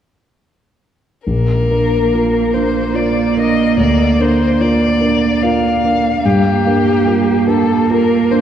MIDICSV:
0, 0, Header, 1, 4, 480
1, 0, Start_track
1, 0, Key_signature, -2, "major"
1, 0, Tempo, 864553
1, 708, Time_signature, 3, 2, 24, 8
1, 1183, Tempo, 824176
1, 4840, End_track
2, 0, Start_track
2, 0, Title_t, "Violin"
2, 0, Program_c, 0, 40
2, 709, Note_on_c, 0, 70, 48
2, 1416, Note_on_c, 0, 72, 42
2, 1425, Note_off_c, 0, 70, 0
2, 1660, Note_on_c, 0, 74, 41
2, 1668, Note_off_c, 0, 72, 0
2, 1904, Note_off_c, 0, 74, 0
2, 1920, Note_on_c, 0, 75, 45
2, 2149, Note_off_c, 0, 75, 0
2, 2152, Note_on_c, 0, 74, 44
2, 2396, Note_on_c, 0, 72, 43
2, 2405, Note_off_c, 0, 74, 0
2, 2629, Note_on_c, 0, 74, 49
2, 2638, Note_off_c, 0, 72, 0
2, 3101, Note_on_c, 0, 77, 54
2, 3110, Note_off_c, 0, 74, 0
2, 3583, Note_on_c, 0, 67, 52
2, 3591, Note_off_c, 0, 77, 0
2, 4296, Note_off_c, 0, 67, 0
2, 4300, Note_on_c, 0, 69, 46
2, 4539, Note_off_c, 0, 69, 0
2, 4547, Note_on_c, 0, 70, 51
2, 4782, Note_on_c, 0, 72, 52
2, 4791, Note_off_c, 0, 70, 0
2, 4840, Note_off_c, 0, 72, 0
2, 4840, End_track
3, 0, Start_track
3, 0, Title_t, "Grand piano"
3, 0, Program_c, 1, 0
3, 703, Note_on_c, 1, 34, 31
3, 800, Control_c, 1, 64, 127
3, 945, Note_on_c, 1, 62, 24
3, 949, Note_on_c, 1, 70, 25
3, 1158, Note_off_c, 1, 62, 0
3, 1160, Note_off_c, 1, 70, 0
3, 1184, Note_on_c, 1, 65, 23
3, 1187, Note_on_c, 1, 70, 23
3, 1401, Note_off_c, 1, 65, 0
3, 1402, Note_off_c, 1, 70, 0
3, 1420, Note_on_c, 1, 62, 22
3, 1424, Note_on_c, 1, 70, 26
3, 1639, Note_off_c, 1, 62, 0
3, 1641, Note_off_c, 1, 70, 0
3, 1655, Note_on_c, 1, 65, 25
3, 1660, Note_on_c, 1, 70, 25
3, 1878, Note_off_c, 1, 65, 0
3, 1881, Note_off_c, 1, 70, 0
3, 1901, Note_on_c, 1, 62, 21
3, 1904, Note_on_c, 1, 70, 24
3, 2122, Note_off_c, 1, 62, 0
3, 2123, Note_off_c, 1, 34, 0
3, 2124, Note_off_c, 1, 70, 0
3, 2139, Note_on_c, 1, 38, 35
3, 2158, Control_c, 1, 64, 0
3, 2270, Control_c, 1, 64, 127
3, 2384, Note_on_c, 1, 62, 22
3, 2386, Note_on_c, 1, 70, 26
3, 2601, Note_off_c, 1, 62, 0
3, 2602, Note_off_c, 1, 70, 0
3, 2623, Note_on_c, 1, 65, 24
3, 2627, Note_on_c, 1, 70, 29
3, 2839, Note_off_c, 1, 65, 0
3, 2841, Note_off_c, 1, 70, 0
3, 2859, Note_on_c, 1, 62, 23
3, 2859, Note_on_c, 1, 70, 28
3, 3076, Note_off_c, 1, 62, 0
3, 3076, Note_off_c, 1, 70, 0
3, 3105, Note_on_c, 1, 65, 27
3, 3106, Note_on_c, 1, 70, 31
3, 3318, Note_off_c, 1, 65, 0
3, 3319, Note_off_c, 1, 70, 0
3, 3344, Note_on_c, 1, 62, 23
3, 3348, Note_on_c, 1, 70, 26
3, 3551, Note_off_c, 1, 38, 0
3, 3557, Note_off_c, 1, 62, 0
3, 3560, Note_off_c, 1, 70, 0
3, 3584, Note_on_c, 1, 43, 37
3, 3588, Control_c, 1, 64, 0
3, 3668, Control_c, 1, 64, 127
3, 3827, Note_on_c, 1, 62, 28
3, 3827, Note_on_c, 1, 70, 28
3, 4038, Note_off_c, 1, 70, 0
3, 4039, Note_off_c, 1, 62, 0
3, 4060, Note_on_c, 1, 70, 27
3, 4061, Note_on_c, 1, 65, 24
3, 4277, Note_off_c, 1, 70, 0
3, 4278, Note_off_c, 1, 65, 0
3, 4295, Note_on_c, 1, 62, 26
3, 4295, Note_on_c, 1, 70, 31
3, 4518, Note_off_c, 1, 62, 0
3, 4518, Note_off_c, 1, 70, 0
3, 4543, Note_on_c, 1, 65, 31
3, 4546, Note_on_c, 1, 70, 34
3, 4760, Note_off_c, 1, 65, 0
3, 4762, Note_off_c, 1, 70, 0
3, 4783, Note_on_c, 1, 62, 29
3, 4786, Note_on_c, 1, 70, 30
3, 4840, Note_off_c, 1, 43, 0
3, 4840, Note_off_c, 1, 62, 0
3, 4840, Note_off_c, 1, 70, 0
3, 4840, End_track
4, 0, Start_track
4, 0, Title_t, "Cello"
4, 0, Program_c, 2, 42
4, 715, Note_on_c, 2, 58, 29
4, 3559, Note_off_c, 2, 58, 0
4, 3589, Note_on_c, 2, 58, 36
4, 4840, Note_off_c, 2, 58, 0
4, 4840, End_track
0, 0, End_of_file